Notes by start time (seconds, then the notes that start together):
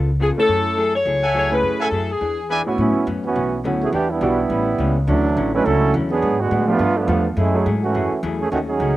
Already playing: C#2
0.20 C#3 B3 F4 G#4 A4
0.37 A3 C#4 E4 A4, muted upright bass stroke
0.48 F#2 F#3 A3 E4 G#4
0.77 F#3 A3 E4 G#4
0.96 C#5
1.05 C#2 F#3 A3 E4 G#4
1.23 A4 E5 F#5 G#5
1.34 F#3 A3 E4 G#4 C#5
1.51 A3 C#4 E4 G#4 B4
1.63 F#2 F#3 A3 E4 G#4
1.80 A4 E5 F#5 G#5
1.91 F#2 F#3 A3 E4 G#4
2.11 G#4
2.21 E2 E3 B3 D4 G#4
2.50 E3 B3 D4 G#4 B4 D5 E5 G#5
2.66 A2 B3 C#4 E4 F#4, muted upright bass stroke
2.78 A2 F#3 B3 C#4 E4
2.96 muted upright bass stroke
3.07 F#2 A2 F#3 B3 C#4
3.25 E3 B3 C#4 F#4
3.35 B1 A2 F#3 B3 C#4
3.64 D2 A2 F#3 A3 B3 C#4 E4 F#4
3.82 E3 A3 C#4 G#4
3.93 E2 E3 B3 D4 G4
4.10 G3 B3 D4 E4
4.21 B1 E3 G3 B3 D4 E4 F#4 G4
4.50 A1 A2 G3 B3 C#4
4.78 C#2 A2 G3 B3 C#4
5.07 D2 D3 E3 F#3 A3 C#4 D4 E4
5.37 A1 D3 F#3 C#4 E4
5.55 F#3 G#3 A3 C#4 D4 E4 B4
5.65 C#2 D3 F#3 C#4 E4 A4
5.94 E2 D3 F#3 C#4 E4
6.11 F#3 B3 D4 G#4
6.22 G#2 F#3 B3 D4
6.40 D3 G#3 B3 F#4
6.51 G#2 A2 F#3 B3 D4
6.68 F3 A3 B3 D4 F4 G4
6.79 G2 G3 B3 F4 A4
6.97 F3 A3 B3 D4
7.07 E2 F3 G3 A3 B3 D4 F4 A4
7.36 F#2 F#3 G#3 A3 C#4 E4 G#4
7.54 F#3 A3 C#4 E4 G#4
7.66 G#2 F#3 A3 E4 G#4
7.83 E3 A3 C#4 F#4
7.94 F#2 F#3 A3 E4 G#4
8.12 muted upright bass stroke
8.23 E2 F#3 A3 E4 G#4
8.40 E3 A3 C#4 G#4
8.51 D#2 D#3 A3 C#4 F#4
8.68 F#3 C#4 D#4 G#4
8.80 C#2 D#3 A3 C#4 F#4